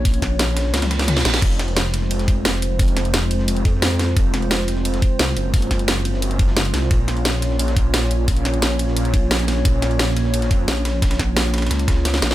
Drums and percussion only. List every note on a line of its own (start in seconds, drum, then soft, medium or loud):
0.05 kick loud
0.05 closed hi-hat loud
0.05 open hi-hat medium
0.14 closed hi-hat soft
0.22 kick medium
0.22 snare medium
0.22 closed hi-hat medium
0.22 ride medium
0.39 snare loud
0.39 closed hi-hat loud
0.39 ride medium
0.57 snare loud
0.57 closed hi-hat medium
0.57 ride medium
0.65 snare soft
0.74 snare medium
0.74 snare loud
0.74 closed hi-hat loud
0.74 ride medium
0.82 snare loud
0.82 closed hi-hat soft
0.82 high tom medium
0.82 ride medium
0.91 snare loud
0.91 closed hi-hat medium
0.91 ride medium
0.99 snare loud
0.99 snare medium
0.99 ride medium
1.08 snare loud
1.08 closed hi-hat loud
1.08 mid tom medium
1.08 ride medium
1.17 snare soft
1.17 snare medium
1.17 closed hi-hat soft
1.25 snare loud
1.25 closed hi-hat medium
1.25 ride medium
1.34 snare medium
1.42 kick loud
1.42 closed hi-hat loud
1.42 crash medium
1.42 ride medium
1.59 snare medium
1.59 closed hi-hat medium
1.59 ride medium
1.68 ride soft
1.77 snare loud
1.77 closed hi-hat loud
1.77 ride medium
1.85 snare medium
1.94 snare medium
1.94 closed hi-hat medium
1.94 ride medium
2.02 snare soft
2.11 closed hi-hat loud
2.11 ride medium
2.19 snare medium
2.19 closed hi-hat soft
2.28 kick loud
2.28 closed hi-hat medium
2.28 ride medium
2.45 snare loud
2.45 closed hi-hat loud
2.45 ride medium
2.54 snare medium
2.62 closed hi-hat medium
2.62 ride medium
2.79 kick loud
2.79 closed hi-hat medium
2.79 open hi-hat medium
2.88 closed hi-hat soft
2.97 snare medium
2.97 closed hi-hat medium
2.97 ride medium
3.05 closed hi-hat soft
3.14 snare loud
3.14 closed hi-hat medium
3.14 ride medium
3.31 closed hi-hat medium
3.31 ride medium
3.39 snare soft
3.48 closed hi-hat loud
3.48 ride medium
3.57 closed hi-hat soft
3.65 kick loud
3.65 closed hi-hat medium
3.65 ride medium
3.82 snare loud
3.82 closed hi-hat loud
3.82 ride medium
3.91 closed hi-hat soft
3.99 snare soft
3.99 closed hi-hat medium
3.99 ride medium
4.08 snare soft
4.17 kick loud
4.17 closed hi-hat medium
4.17 ride medium
4.34 snare medium
4.34 closed hi-hat medium
4.34 ride medium
4.42 ride soft
4.51 snare loud
4.51 closed hi-hat medium
4.51 ride medium
4.59 snare medium
4.68 snare medium
4.68 closed hi-hat medium
4.68 ride medium
4.77 snare soft
4.85 closed hi-hat medium
4.85 ride medium
4.94 snare medium
4.94 closed hi-hat soft
5.02 kick loud
5.02 closed hi-hat medium
5.02 ride medium
5.19 snare loud
5.19 closed hi-hat loud
5.19 ride medium
5.28 snare medium
5.37 closed hi-hat medium
5.37 ride medium
5.54 kick loud
5.54 closed hi-hat medium
5.54 open hi-hat medium
5.62 closed hi-hat soft
5.71 kick medium
5.71 snare medium
5.71 closed hi-hat medium
5.71 ride medium
5.79 closed hi-hat soft
5.88 snare loud
5.88 closed hi-hat medium
5.88 ride medium
6.05 closed hi-hat medium
6.05 ride medium
6.14 snare soft
6.22 closed hi-hat medium
6.22 ride medium
6.31 closed hi-hat soft
6.39 kick loud
6.39 closed hi-hat medium
6.39 ride medium
6.48 snare soft
6.57 snare loud
6.57 closed hi-hat medium
6.57 ride medium
6.65 closed hi-hat soft
6.74 snare soft
6.74 closed hi-hat medium
6.74 ride medium
6.82 snare soft
6.91 kick loud
6.91 closed hi-hat medium
6.91 ride medium
7.08 snare medium
7.08 closed hi-hat medium
7.08 ride medium
7.17 ride soft
7.25 snare loud
7.25 closed hi-hat medium
7.25 ride medium
7.34 snare medium
7.42 snare medium
7.42 closed hi-hat medium
7.42 ride medium
7.51 snare soft
7.59 closed hi-hat medium
7.59 ride medium
7.68 snare soft
7.68 closed hi-hat soft
7.77 kick loud
7.77 closed hi-hat medium
7.77 ride medium
7.94 snare loud
7.94 closed hi-hat medium
7.94 ride medium
8.02 snare medium
8.11 closed hi-hat medium
8.11 ride medium
8.28 kick loud
8.28 closed hi-hat medium
8.28 open hi-hat medium
8.37 closed hi-hat soft
8.45 snare medium
8.45 closed hi-hat medium
8.45 ride medium
8.54 closed hi-hat soft
8.62 snare loud
8.62 closed hi-hat loud
8.62 ride medium
8.79 closed hi-hat medium
8.79 ride medium
8.88 snare soft
8.97 closed hi-hat loud
8.97 ride medium
9.05 closed hi-hat soft
9.14 kick loud
9.14 closed hi-hat medium
9.14 ride medium
9.31 snare loud
9.31 closed hi-hat medium
9.31 ride medium
9.39 closed hi-hat soft
9.48 snare soft
9.48 closed hi-hat medium
9.48 ride medium
9.57 snare soft
9.65 kick loud
9.65 closed hi-hat medium
9.65 ride medium
9.82 snare medium
9.82 closed hi-hat medium
9.82 ride medium
9.91 ride soft
9.99 snare loud
9.99 closed hi-hat loud
9.99 ride medium
10.08 snare medium
10.17 snare medium
10.17 closed hi-hat medium
10.17 ride medium
10.25 snare soft
10.34 closed hi-hat loud
10.34 ride medium
10.42 snare medium
10.42 closed hi-hat soft
10.51 kick loud
10.51 closed hi-hat medium
10.51 ride medium
10.68 snare loud
10.68 closed hi-hat loud
10.68 ride medium
10.77 ride soft
10.85 snare loud
10.85 closed hi-hat medium
10.85 ride medium
11.02 kick loud
11.02 snare loud
11.02 closed hi-hat loud
11.02 ride medium
11.11 snare loud
11.11 closed hi-hat soft
11.11 ride medium
11.19 kick medium
11.19 snare medium
11.19 closed hi-hat medium
11.19 ride medium
11.37 snare loud
11.37 closed hi-hat medium
11.37 ride medium
11.54 snare medium
11.54 closed hi-hat medium
11.54 ride medium
11.58 snare medium
11.58 ride medium
11.62 snare medium
11.62 ride medium
11.67 snare medium
11.67 ride medium
11.71 snare loud
11.71 closed hi-hat loud
11.71 ride medium
11.79 snare soft
11.79 closed hi-hat soft
11.88 kick loud
11.88 snare loud
11.88 closed hi-hat medium
11.88 ride medium
11.97 snare soft
12.05 snare medium
12.05 closed hi-hat loud
12.05 ride medium
12.14 snare medium
12.14 closed hi-hat soft
12.14 ride soft
12.22 snare loud
12.22 snare medium
12.22 closed hi-hat medium
12.22 ride medium
12.31 snare soft
12.31 snare medium